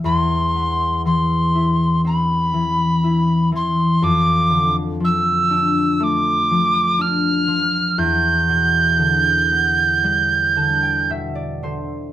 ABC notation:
X:1
M:4/4
L:1/16
Q:1/4=60
K:Ephr
V:1 name="Tin whistle"
c'4 c'4 b6 c'2 | d'3 z e'4 d'4 f'4 | g'12 z4 |]
V:2 name="Harp"
z16 | z16 | z8 z2 a g e d c2 |]
V:3 name="Harp" clef=bass
E,,2 B,2 E,2 E2 C2 E,2 E2 E,2 | F,,2 D,2 F,2 D2 A,2 F,2 D2 F,2 | E,,2 B,,2 D,2 B,2 G,2 D,2 B,,2 D,2 |]